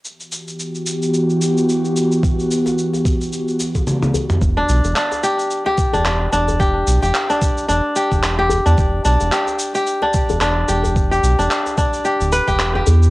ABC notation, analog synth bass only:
X:1
M:4/4
L:1/16
Q:"Swing 16ths" 1/4=110
K:Em
V:1 name="Analog synth bass" clef=bass
z16 | z16 | E,,,2 B,,, E,,, z6 z E,,,3 E,,,2- | E,,,2 B,,, E,,, z4 E,,, z2 E,,,4 E,, |
E,,,2 B,,, E,,, z6 z E,,,3 E,,,2- | E,,,2 B,,, E,,, z4 z D,,,2 E,,,3 E,,2 |]